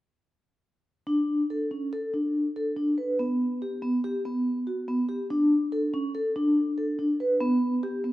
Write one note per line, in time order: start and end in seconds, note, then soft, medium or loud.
1.07 1.41 D4 medium
1.50 1.67 A4 soft
1.71 1.88 C#4 soft
1.93 2.09 A4 medium
2.14 2.47 D4 soft
2.56 2.73 A4 soft
2.77 2.94 D4 soft
2.98 3.15 B4 soft
3.19 3.53 B3 medium
3.62 3.78 G4 soft
3.82 3.99 B3 medium
4.04 4.20 G4 medium
4.25 4.58 B3 medium
4.67 4.83 F#4 soft
4.88 5.04 B3 medium
5.09 5.25 G4 soft
5.30 5.63 D4 medium
5.72 5.89 A4 medium
5.94 6.10 C#4 medium
6.15 6.31 A4 medium
6.36 6.69 D4 medium
6.78 6.94 A4 soft
6.99 7.15 D4 soft
7.20 7.36 B4 soft
7.41 7.74 B3 medium
7.83 8.00 G4 medium
8.04 8.13 B3 medium